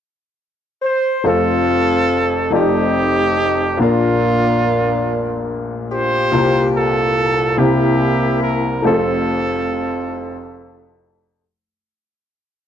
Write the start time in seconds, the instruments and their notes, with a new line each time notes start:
0.82 horn section C5
1.24 upright piano F1 F2 A3 C4 F4 A4, horn section C4 F4 A4
2.50 upright piano F1 F2 A3 D#4 F4 D5, horn section C4 G4
2.56 horn section D#4, upright piano G4
3.77 upright piano A#1 A#2 A#3 D4 F4, horn section F4
3.82 horn section A#3 D4, upright piano A#4
5.89 horn section F4 G4 C5
6.32 upright piano C2 C3 A#3 C4 F4 G4
6.75 horn section F4 A4
7.57 upright piano C2 C3 A#3 C4 E4 G4, horn section A#3 E4 G4
8.41 horn section A#4
8.82 upright piano F1 F2 A3 C4 F4, horn section A4
8.87 horn section C4 F4, upright piano G#4
8.94 upright piano A4